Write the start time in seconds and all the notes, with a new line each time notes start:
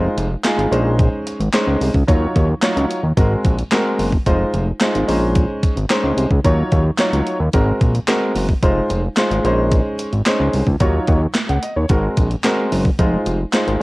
Already playing: G#3 D#4 F4 C5
0.17 F1, closed hi-hat
0.44 G#3 D#4 F4 G#4, snare, clap, closed hi-hat
0.58 G#1, closed hi-hat
0.71 A#1 G#3 C#4 D#4 C5, closed hi-hat
0.99 kick, closed hi-hat
1.27 closed hi-hat
1.40 G#1, closed hi-hat
1.53 G#3 C#4 D#4 C5, snare, clap, closed hi-hat
1.67 C#2
1.81 C2, open hi-hat
1.94 C#2, kick
2.08 D#2 F#3 D#4 F4 C#5, kick, closed hi-hat
2.36 D#2, kick, closed hi-hat
2.62 F#3 D#4 F4 C#5, snare, clap, closed hi-hat
2.76 C#2, closed hi-hat
2.91 closed hi-hat
3.03 D#2
3.17 G#1 G#3 C4 F#4 A#4, kick, closed hi-hat
3.45 A#1, kick, closed hi-hat
3.59 closed hi-hat
3.71 G#3 C4 F#4 A#4, snare, clap, closed hi-hat
3.99 F#1, open hi-hat
4.12 kick
4.26 F1 G#3 D#4 F4 C5, kick, closed hi-hat
4.54 F1, closed hi-hat
4.80 G#3 D#4 F4 C5, snare, clap, closed hi-hat
4.95 G#1, closed hi-hat
5.08 A#1 G#3 C#4 D#4 C5, open hi-hat
5.35 kick, closed hi-hat
5.63 kick, closed hi-hat
5.77 G#1, closed hi-hat
5.90 G#3 C#4 D#4 C5, snare, clap, closed hi-hat
6.03 C#2
6.17 C2, closed hi-hat
6.31 C#2, kick
6.44 D#2 F#3 D#4 F4 C#5, kick, closed hi-hat
6.72 D#2, kick, closed hi-hat
6.98 F#3 D#4 F4 C#5, snare, clap, closed hi-hat
7.13 C#2, closed hi-hat
7.27 closed hi-hat
7.40 D#2
7.53 G#1 G#3 C4 F#4 A#4, kick, closed hi-hat
7.81 A#1, kick, closed hi-hat
7.95 closed hi-hat
8.08 G#3 C4 F#4 A#4, snare, clap, closed hi-hat
8.35 F#1, open hi-hat
8.49 kick
8.63 F1 G#3 D#4 F4 C5, kick, closed hi-hat
8.90 F1, closed hi-hat
9.17 G#3 D#4 F4 C5, snare, clap, closed hi-hat
9.31 G#1, closed hi-hat
9.44 A#1 G#3 C#4 D#4 C5, closed hi-hat
9.72 kick, closed hi-hat
9.99 closed hi-hat
10.13 G#1, closed hi-hat
10.26 G#3 C#4 D#4 C5, snare, clap, closed hi-hat
10.40 C#2
10.54 C2, open hi-hat
10.67 C#2, kick
10.80 D#2 F#3 D#4 F4 C#5, kick, closed hi-hat
11.07 D#2, kick, closed hi-hat
11.34 snare, clap, closed hi-hat
11.49 C#2 F#5, closed hi-hat
11.63 D#5, closed hi-hat
11.76 D#2 C#5
11.89 G#1 G#3 C4 F#4 A#4, kick, closed hi-hat
12.17 A#1, kick, closed hi-hat
12.31 closed hi-hat
12.44 G#3 C4 F#4 A#4, snare, clap, closed hi-hat
12.72 F#1, open hi-hat
12.85 kick
12.99 F1 G#3 D#4 F4 C5, kick, closed hi-hat
13.26 F1, closed hi-hat
13.53 G#3 D#4 F4 C5, snare, clap, closed hi-hat
13.67 G#1, closed hi-hat